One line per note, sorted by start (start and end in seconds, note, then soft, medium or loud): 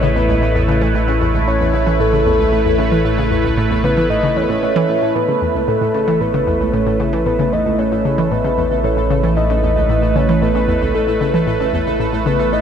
0.00 5.13 A1 medium
0.00 0.08 C#3 medium
0.00 5.15 A3 medium
0.00 12.61 A3 medium
0.00 12.61 E4 medium
0.00 0.97 A4 medium
0.00 12.61 B4 medium
0.00 0.17 C#5 loud
0.00 12.61 C#5 medium
0.16 0.21 E2 medium
0.16 0.68 B4 medium
0.29 0.37 C#2 medium
0.42 0.50 A2 medium
0.55 0.63 E2 medium
0.68 0.81 C#3 medium
0.81 0.94 E3 medium
0.94 1.03 A2 medium
0.94 5.18 B4 medium
1.08 1.13 C#3 medium
1.21 1.26 E2 medium
1.34 1.42 C#2 medium
1.47 1.56 A2 medium
1.47 2.01 C#5 loud
1.60 1.69 E2 medium
1.73 1.86 C#3 medium
1.87 1.99 E3 medium
2.00 2.08 A2 medium
2.00 2.25 A4 loud
2.13 2.18 C#3 medium
2.26 2.31 E2 medium
2.26 2.75 A4 medium
2.39 2.48 C#2 medium
2.52 2.61 A2 medium
2.65 2.74 E2 medium
2.79 2.91 C#3 medium
2.92 3.04 E3 medium
3.05 3.13 A2 medium
3.18 3.23 C#3 medium
3.31 3.36 E2 medium
3.44 3.53 C#2 medium
3.57 3.66 A2 medium
3.71 3.79 E2 medium
3.84 3.96 C#3 medium
3.84 4.09 B4 loud
3.97 4.10 E3 medium
4.10 4.19 A2 medium
4.10 4.38 D#5 loud
4.23 4.28 C#3 medium
4.36 4.45 E2 loud
4.36 4.45 C#5 loud
4.43 4.52 B4 medium
4.49 4.58 A2 medium
4.49 4.63 C#5 loud
4.63 4.71 A2 medium
4.63 5.17 C#5 loud
4.76 4.84 E3 loud
4.89 4.98 A2 medium
5.02 5.11 A2 medium
5.15 12.61 A1 medium
5.15 5.24 A2 medium
5.15 12.61 A3 medium
5.15 12.61 A4 medium
5.15 5.61 B4 loud
5.28 5.34 C#3 medium
5.42 5.47 E2 medium
5.55 5.63 C#2 medium
5.61 5.70 B4 medium
5.68 5.77 A2 medium
5.68 6.22 A4 loud
5.81 5.90 A2 medium
5.94 6.07 C#3 medium
6.08 6.20 E3 medium
6.21 6.29 A2 medium
6.21 6.75 B4 loud
6.34 6.39 C#3 medium
6.47 6.52 E2 medium
6.60 6.69 C#2 medium
6.73 6.82 A2 medium
6.73 7.13 C#5 loud
6.87 6.95 A2 medium
7.00 7.12 C#3 medium
7.13 7.25 E3 medium
7.26 7.34 A2 medium
7.26 7.54 B4 loud
7.39 7.44 C#3 medium
7.52 7.57 E2 medium
7.52 7.80 D#5 loud
7.66 7.74 C#2 medium
7.79 7.87 A2 medium
7.79 8.33 C#5 loud
7.92 8.00 A2 medium
8.05 8.18 C#3 medium
8.18 8.31 E3 medium
8.31 8.40 A2 medium
8.31 8.86 B4 loud
8.45 8.50 C#3 medium
8.58 8.63 E2 medium
8.71 8.79 C#2 medium
8.84 8.92 A2 medium
8.84 9.24 C#5 medium
8.97 9.06 A2 medium
9.10 9.23 C#3 medium
9.24 9.36 E3 medium
9.37 9.45 A2 medium
9.37 10.17 D#5 loud
9.50 9.55 C#3 medium
9.63 9.68 E2 medium
9.76 9.85 C#2 medium
9.89 9.98 A2 medium
10.02 10.11 A2 medium
10.16 10.28 C#3 medium
10.16 10.43 C#5 medium
10.29 10.41 E3 medium
10.42 10.50 A2 medium
10.42 10.96 B4 loud
10.55 10.60 C#3 medium
10.68 10.73 E2 medium
10.81 10.90 C#2 medium
10.94 11.03 A2 medium
10.94 11.34 A4 medium
11.08 11.16 A2 medium
11.21 11.33 C#3 medium
11.34 11.46 E3 medium
11.47 11.55 A2 medium
11.60 11.65 C#3 medium
11.73 11.78 E2 medium
11.87 11.95 C#2 medium
12.00 12.08 A2 medium
12.13 12.21 A2 medium
12.26 12.38 C#3 medium
12.26 12.54 B4 medium
12.39 12.52 E3 medium
12.52 12.61 A2 medium
12.52 12.61 D#5 loud